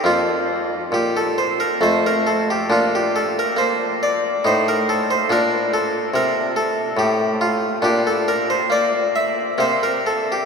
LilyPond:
<<
  \new Staff \with { instrumentName = "Harpsichord" } { \time 3/4 \key bes \major \tempo 4 = 69 << { f'4 g'16 a'16 c''16 bes'16 c''16 bes'16 a'16 g'16 | f'16 g'16 a'16 bes'16 c''8 d''8 c''16 bes'16 a'16 c''16 | bes'8 a'8 bes'8 a'8 g'8 f'8 | \key bes \lydian g'16 a'16 bes'16 c''16 d''8 e''8 c''16 bes'16 a'16 g'16 | } \\ { bes2 a4 | d'2 ees'4 | d'2. | d'2 bes4 | } >> }
  \new Staff \with { instrumentName = "Harpsichord" } { \clef bass \time 3/4 \key bes \major f,4 bes,4 f,4 | bes,4 bes4 a,4 | bes,4 c4 a,4 | \key bes \lydian bes,4 bes4 c4 | }
>>